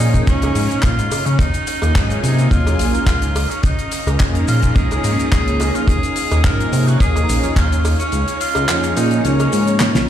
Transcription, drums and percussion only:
0.00 shaker
0.14 kick, closed hi-hat, shaker
0.27 kick, closed hi-hat, shaker
0.42 closed hi-hat, cowbell, shaker
0.55 open hi-hat, shaker
0.71 closed hi-hat, shaker
0.83 kick, clap, closed hi-hat, shaker
0.99 closed hi-hat, shaker
1.11 open hi-hat, cowbell, shaker
1.26 closed hi-hat, shaker
1.39 kick, closed hi-hat, shaker
1.54 closed hi-hat, shaker
1.67 open hi-hat, shaker
1.82 closed hi-hat, cowbell, shaker
1.95 kick, clap, closed hi-hat, shaker
2.10 closed hi-hat, shaker
2.24 open hi-hat, shaker
2.39 closed hi-hat, shaker
2.51 kick, closed hi-hat, shaker
2.67 closed hi-hat, cowbell, shaker
2.79 open hi-hat, shaker
2.94 closed hi-hat, shaker
3.07 kick, clap, closed hi-hat, shaker
3.22 closed hi-hat, shaker
3.36 open hi-hat, cowbell, shaker
3.51 closed hi-hat, shaker
3.63 kick, closed hi-hat, shaker
3.79 closed hi-hat, shaker
3.92 open hi-hat, shaker
4.07 closed hi-hat, cowbell, shaker
4.19 kick, clap, closed hi-hat, shaker
4.35 closed hi-hat, shaker
4.48 open hi-hat, shaker
4.62 kick, closed hi-hat, shaker
4.76 kick, closed hi-hat, shaker
4.91 closed hi-hat, cowbell, shaker
5.04 open hi-hat, shaker
5.19 closed hi-hat, shaker
5.32 kick, clap, closed hi-hat, shaker
5.48 closed hi-hat, shaker
5.60 open hi-hat, cowbell, shaker
5.75 closed hi-hat, shaker
5.88 kick, closed hi-hat, shaker
6.03 closed hi-hat, shaker
6.16 open hi-hat, shaker
6.31 closed hi-hat, cowbell, shaker
6.44 kick, clap, closed hi-hat, shaker
6.60 closed hi-hat, shaker
6.73 open hi-hat, shaker
6.88 closed hi-hat, shaker
7.00 kick, closed hi-hat, shaker
7.16 closed hi-hat, cowbell, shaker
7.29 open hi-hat, shaker
7.43 closed hi-hat, shaker
7.56 kick, clap, closed hi-hat, shaker
7.72 closed hi-hat, shaker
7.85 open hi-hat, cowbell, shaker
8.00 closed hi-hat, shaker
8.12 closed hi-hat, shaker
8.28 closed hi-hat, shaker
8.41 open hi-hat, shaker
8.55 closed hi-hat, cowbell, shaker
8.68 clap, closed hi-hat, shaker
8.83 closed hi-hat, shaker
8.97 open hi-hat, shaker
9.11 closed hi-hat, shaker
9.25 closed hi-hat, shaker
9.40 closed hi-hat, cowbell, shaker
9.53 open hi-hat, shaker
9.67 closed hi-hat, shaker
9.80 snare, clap, closed hi-hat, shaker
9.95 snare, closed hi-hat, shaker

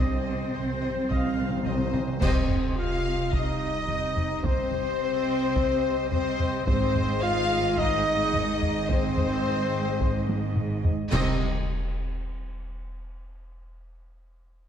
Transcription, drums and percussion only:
1.11 taiko
1.66 taiko mid
1.94 taiko mid
2.22 concert bass drum, taiko, crash
2.50 taiko low
3.33 taiko
3.89 taiko low
4.17 taiko low
4.44 taiko
4.72 taiko low
5.56 taiko
6.12 taiko low
6.39 taiko low
6.67 taiko
6.95 taiko low
7.78 taiko
8.34 taiko low
8.62 taiko low
8.90 taiko
9.17 taiko low
10.01 taiko
10.29 taiko high
10.56 taiko low-mid
10.85 taiko low
11.12 concert bass drum, crash

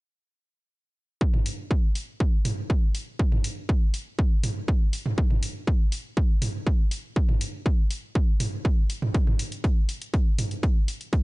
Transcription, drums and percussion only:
1.21 kick
1.34 mid tom
1.46 open hi-hat
1.71 kick
1.95 open hi-hat
2.20 kick
2.45 mid tom, open hi-hat
2.70 kick
2.95 open hi-hat
3.19 kick
3.32 mid tom
3.44 open hi-hat
3.69 kick
3.94 open hi-hat
4.19 kick
4.43 mid tom, open hi-hat
4.68 kick
4.93 open hi-hat
5.06 mid tom
5.18 kick
5.30 mid tom
5.43 open hi-hat
5.67 kick
5.92 open hi-hat
6.17 kick
6.42 mid tom, open hi-hat
6.67 kick
6.91 open hi-hat
7.16 kick
7.29 mid tom
7.41 open hi-hat
7.66 kick
7.91 open hi-hat
8.15 kick
8.40 mid tom, open hi-hat
8.65 kick
8.90 open hi-hat
9.02 mid tom
9.14 kick, closed hi-hat
9.27 mid tom
9.39 open hi-hat
9.52 closed hi-hat
9.64 kick, closed hi-hat
9.89 open hi-hat
10.02 closed hi-hat
10.14 kick, closed hi-hat
10.38 mid tom, open hi-hat
10.51 closed hi-hat
10.63 kick, closed hi-hat
10.88 open hi-hat
11.01 closed hi-hat
11.13 kick, closed hi-hat

